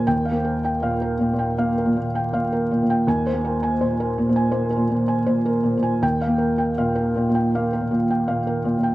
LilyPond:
<<
  \new Staff \with { instrumentName = "Felt piano" } { \time 4/4 \key aes \lydian \tempo 4 = 80 << { g''8 r2. r8 | aes''8 r2. r8 | g''8 r2. r8 | } \\ { r16 f''16 bes'16 g''16 f''16 bes'16 bes,16 g''16 f''16 bes'16 bes,16 g''16 f''16 bes'16 bes,16 g''16 | r16 c''16 bes'16 aes''16 c''16 bes'16 bes,16 aes''16 c''16 bes'16 bes,16 aes''16 c''16 bes'16 bes,16 aes''16 | r16 f''16 bes'16 g''16 f''16 bes'16 bes,16 g''16 f''16 bes'16 bes,16 g''16 f''16 bes'16 bes,16 g''16 | } >> }
  \new Staff \with { instrumentName = "Felt piano" } { \clef bass \time 4/4 \key aes \lydian \tuplet 3/2 { ees,8 bes4 bes,4 bes,8 bes8 bes,4 bes,4 bes,8 } | \tuplet 3/2 { ees,8 bes4 bes,4 bes,8 bes8 bes,4 bes,4 bes,8 } | \tuplet 3/2 { ees,8 bes4 bes,4 bes,8 bes8 bes,4 bes,4 bes,8 } | }
>>